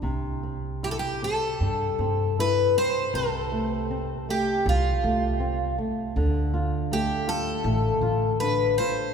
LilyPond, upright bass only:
\new Staff \with { instrumentName = "Upright bass" } { \clef bass \time 4/4 \key c \major \tempo 4 = 79 c,2 g,8 g,4. | c,2 c,8 c,4. | d,2 a,,8 a,,4. | }